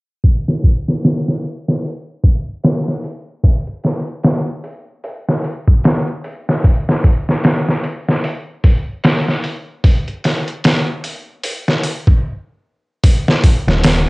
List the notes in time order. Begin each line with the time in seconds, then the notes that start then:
0.24 kick, open hi-hat
0.48 snare
0.64 kick, open hi-hat
0.88 snare
1.04 snare, open hi-hat
1.28 snare
1.44 open hi-hat
1.68 snare
1.84 open hi-hat
2.24 kick, open hi-hat
2.64 snare, open hi-hat
2.88 snare
3.04 open hi-hat
3.44 kick, open hi-hat
3.67 closed hi-hat
3.84 snare, open hi-hat
4.07 closed hi-hat
4.23 snare, open hi-hat
4.64 open hi-hat
5.04 open hi-hat
5.29 snare
5.44 open hi-hat
5.67 kick
5.84 snare, open hi-hat
6.08 closed hi-hat
6.24 open hi-hat
6.49 snare
6.64 kick, open hi-hat
6.89 snare
7.04 kick, open hi-hat
7.29 snare
7.44 snare, open hi-hat
7.69 snare
7.84 open hi-hat
8.09 snare
8.24 open hi-hat
8.64 kick, open hi-hat
9.04 snare, open hi-hat
9.29 snare
9.44 open hi-hat
9.84 kick, open hi-hat
10.08 closed hi-hat
10.24 snare, open hi-hat
10.48 closed hi-hat
10.64 snare, open hi-hat
11.04 open hi-hat
11.44 open hi-hat
11.68 snare
11.84 open hi-hat
12.07 kick
13.04 kick, open hi-hat
13.28 snare
13.44 kick, open hi-hat
13.68 D#1, snare
13.84 snare, open hi-hat